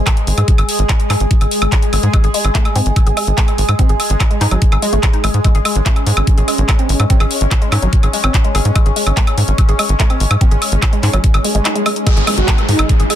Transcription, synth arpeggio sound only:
2.13 2.18 G#3 medium
2.24 2.26 G#4 medium
2.34 2.41 G#3 medium
2.55 2.59 A3 medium
2.76 2.82 C4 medium
3.07 3.09 G#4 medium
3.17 3.20 G#3 medium
3.38 3.42 A3 medium
3.79 3.83 C4 medium
3.89 3.92 G#4 medium
4.31 4.37 G#3 medium
4.41 4.45 D#4 medium
4.51 4.56 F#3 medium
4.72 4.75 G#4 medium
4.82 4.87 G#3 loud
4.93 4.99 A3 medium
5.03 5.08 G#4 medium
5.13 5.18 D#4 medium
5.24 5.30 G#3 medium
5.44 5.49 G#3 medium
5.55 5.57 G#4 medium
5.65 5.72 G#3 medium
5.86 5.90 A3 medium
6.38 6.40 G#4 medium
6.48 6.51 G#3 medium
6.69 6.73 A3 medium
6.79 6.86 C4 medium
7.10 7.14 C4 medium
7.20 7.23 G#4 medium
7.62 7.68 G#3 medium
7.72 7.77 D#4 medium
7.82 7.87 F#3 medium
8.03 8.06 G#4 medium
8.13 8.18 G#3 medium
8.24 8.30 C4 medium
8.34 8.41 G#4 medium
8.45 8.51 G#3 medium
8.55 8.62 G#4 loud
8.76 8.80 G#3 medium
8.86 8.89 G#4 medium
8.96 9.03 G#3 medium
9.17 9.21 A3 medium
9.69 9.71 G#4 medium
9.79 9.82 G#3 medium
10.00 10.04 A3 medium
10.10 10.17 C4 medium
10.41 10.45 C4 medium
10.51 10.54 G#4 medium
10.93 10.99 G#3 medium
11.03 11.08 D#4 medium
11.13 11.18 F#3 medium
11.34 11.37 G#4 medium
11.44 11.49 G#3 medium
11.55 11.59 G#3 medium
11.65 11.70 D#4 medium
11.76 11.80 G#3 medium
11.86 11.89 G#3 medium
12.07 12.11 G#3 medium
12.17 12.20 G#4 medium
12.27 12.34 G#3 medium
12.48 12.52 A3 medium
13.00 13.02 G#4 medium
13.10 13.13 G#3 medium

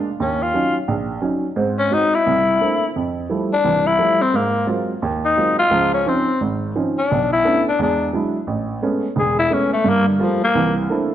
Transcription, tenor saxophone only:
0.22 0.44 C#4 medium
0.43 0.76 F4 medium
1.79 1.95 C#4 medium
1.94 2.16 D#4 medium
2.15 2.89 E4 medium
3.53 3.89 D4 medium
3.87 4.23 E4 medium
4.22 4.38 C4 medium
4.36 4.69 A#3 medium
5.25 5.56 D#4 medium
5.59 5.91 F4 loud
5.94 6.10 C#4 medium
6.09 6.42 C4 medium
6.98 7.29 D4 medium
7.33 7.64 E4 medium
7.69 7.79 D4 medium
7.82 8.13 D4 medium
9.20 9.38 G#4 medium
9.39 9.55 E4 medium
9.53 9.73 C#4 medium
9.73 9.91 A3 medium
9.89 10.08 A#3 medium
10.08 10.24 D3 soft
10.22 10.43 F3 medium
10.44 10.75 A#3 medium

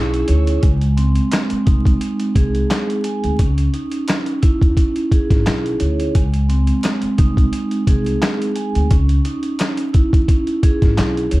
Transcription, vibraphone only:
0.00 0.65 C#4 medium
0.00 0.63 D#4 medium
0.00 0.63 E4 loud
0.00 0.63 G#4 medium
0.28 0.63 C#5 medium
0.63 1.31 G#3 medium
0.97 3.39 C4 medium
1.32 2.00 G#3 medium
1.66 3.39 D#4 medium
2.01 3.39 G#3 medium
2.36 3.39 G#4 medium
3.05 3.39 G#5 medium
3.40 4.07 C#4 medium
3.74 6.15 D#4 medium
4.08 4.77 C#4 medium
4.42 6.15 E4 loud
4.78 6.16 C#4 medium
5.12 6.15 G#4 medium
5.80 6.15 C#5 medium
6.15 6.83 G#3 medium
6.49 8.91 C4 medium
6.84 7.51 G#3 medium
7.18 8.91 D#4 medium
7.52 8.91 G#3 medium
7.88 8.91 G#4 medium
8.56 8.91 G#5 medium
8.91 9.58 C#4 medium
9.25 11.40 D#4 medium
9.60 10.29 C#4 medium
9.94 11.40 E4 loud
10.30 11.40 C#4 medium
10.63 11.40 G#4 medium
11.31 11.40 C#5 medium

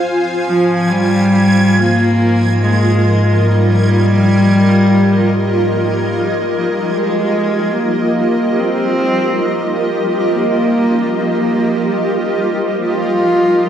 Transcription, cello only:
0.46 0.91 F3 medium
0.90 1.81 G3 loud
1.79 2.65 A#3 loud
2.63 3.50 G#3 medium
3.48 6.04 G3 loud
6.87 7.73 G#3 medium
7.72 8.60 A#3 medium
8.59 9.88 C4 loud
10.32 11.14 A#3 loud
11.17 12.42 A#3 loud
12.90 13.69 F4 loud

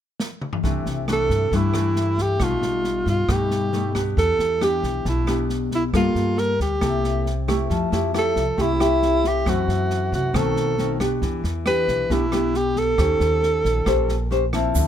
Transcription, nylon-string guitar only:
0.63 1.50 C3 soft
0.63 1.04 E3 soft
0.63 1.05 A3 soft
0.63 1.05 D4 soft
1.08 1.49 E3 soft
1.08 1.49 A3 soft
1.08 1.49 D4 medium
1.52 2.38 G2 soft
1.52 1.71 E3 medium
1.52 1.71 A3 medium
1.52 1.71 D4 medium
1.74 2.37 E3 medium
1.74 2.37 A3 medium
1.74 2.37 D4 medium
2.40 3.27 B2 soft
2.40 3.25 G3 soft
2.40 3.26 A3 soft
2.40 3.26 D#4 soft
3.28 4.15 B2 soft
3.28 3.69 G3 soft
3.28 3.70 A3 soft
3.28 3.70 D#4 soft
3.73 3.92 G3 medium
3.73 3.92 A3 medium
3.73 3.92 D#4 medium
3.95 4.58 B3 medium
3.95 4.58 D4 medium
3.95 4.58 G4 medium
4.17 5.03 E3 soft
4.61 5.24 B3 soft
4.61 5.24 D4 medium
4.61 5.24 G4 medium
5.05 5.91 B2 soft
5.27 5.90 B3 medium
5.27 5.90 D4 medium
5.27 5.90 G4 medium
5.93 6.79 G3 soft
5.93 6.53 A#3 soft
5.93 6.53 F4 soft
5.93 6.53 A4 medium
6.82 7.68 C3 soft
6.82 7.25 A#3 soft
6.82 7.26 E4 soft
6.82 7.26 A4 soft
7.48 7.91 A3 medium
7.48 7.92 E4 medium
7.48 7.92 G4 medium
7.70 8.56 F3 soft
7.92 8.10 A3 medium
7.92 8.11 E4 medium
7.92 8.11 G4 medium
8.14 8.42 A3 soft
8.14 8.42 E4 medium
8.14 8.43 G4 medium
8.57 9.44 C3 soft
8.57 8.71 A3 soft
8.57 8.71 E4 soft
8.57 8.71 G4 soft
8.80 9.43 A3 medium
8.80 9.43 E4 medium
8.80 9.43 G4 medium
9.46 10.32 F#2 soft
9.46 10.31 E3 soft
9.46 10.31 A3 soft
9.46 10.31 C4 soft
10.33 11.20 B2 soft
10.33 10.74 D#3 medium
10.33 10.75 A3 soft
10.33 10.75 C4 medium
10.78 10.97 D#3 medium
10.78 10.97 A3 soft
10.78 10.97 C4 medium
11.00 11.41 B3 soft
11.00 11.41 D4 medium
11.00 11.41 G4 medium
11.23 12.09 E3 soft
11.66 12.07 B3 medium
11.66 12.07 D4 medium
11.66 12.07 G4 medium
12.10 12.96 B2 soft
12.10 12.23 B3 medium
12.10 12.24 D4 medium
12.10 12.24 G4 soft
12.32 12.95 B3 medium
12.32 12.95 D4 medium
12.32 12.95 G4 medium
12.98 13.84 D#3 soft
12.98 13.83 C#4 soft
12.98 13.83 G4 medium
12.98 13.84 C5 medium
13.86 14.73 A#2 soft
13.86 14.15 C#4 soft
13.86 14.15 G4 soft
13.86 14.15 C5 medium
14.31 14.44 C#4 soft
14.31 14.44 G4 soft
14.31 14.44 C5 medium
14.53 14.88 F3 medium
14.53 14.88 C4 soft
14.53 14.88 E4 medium
14.76 14.88 D3 soft

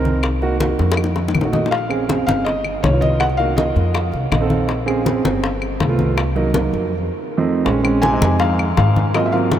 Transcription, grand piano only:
0.00 0.23 C4 medium
0.00 0.23 D#4 medium
0.00 0.24 A#4 medium
0.42 0.55 A#3 medium
0.42 0.55 D#4 medium
0.42 0.55 F#4 medium
0.60 0.97 A#3 medium
0.60 0.98 D#4 medium
0.60 0.98 F#4 medium
1.44 1.72 A3 medium
1.44 1.72 D#4 medium
1.44 1.72 F#4 medium
1.89 2.03 C4 medium
1.89 2.03 C#4 medium
1.89 2.04 G#4 medium
2.09 2.46 C4 medium
2.09 2.46 C#4 medium
2.09 2.46 G#4 medium
2.92 3.20 B3 medium
2.92 3.20 D#4 medium
2.92 3.21 F4 medium
3.39 3.52 A#3 medium
3.39 3.52 D#4 medium
3.39 3.52 F#4 medium
3.57 3.94 A#3 medium
3.57 3.95 D#4 medium
3.57 3.95 F4 medium
4.32 4.49 D#5 medium
4.41 4.69 C4 medium
4.41 4.69 D#4 medium
4.41 4.69 A4 medium
4.50 4.68 F5 medium
4.86 5.00 C4 medium
4.86 5.00 C#4 medium
4.86 5.00 G#4 medium
5.05 5.43 C4 medium
5.05 5.43 C#4 medium
5.05 5.43 G#4 medium
5.89 6.17 A3 medium
5.89 6.17 B3 medium
5.89 6.17 F4 medium
6.35 6.49 F#3 medium
6.35 6.49 A#3 medium
6.35 6.49 D#4 medium
6.54 6.92 F#3 medium
6.54 6.92 A#3 medium
6.54 6.92 D#4 medium
7.38 7.66 F2 medium
7.38 7.66 A3 medium
7.38 7.64 C4 medium
7.38 7.66 D#4 medium
7.65 7.79 G#3 medium
7.65 7.79 C4 medium
7.65 7.79 C#4 medium
7.83 8.04 G#3 medium
7.83 8.04 C4 medium
7.83 8.04 C#4 medium
8.12 8.64 G#3 medium
8.12 8.64 C4 medium
8.12 8.65 D#4 medium
9.15 9.28 F#3 medium
9.15 9.28 A#3 medium
9.15 9.28 C4 medium
9.15 9.28 F4 medium
9.33 9.53 F#3 medium
9.33 9.53 A#3 medium
9.33 9.53 C4 medium
9.33 9.53 F4 medium

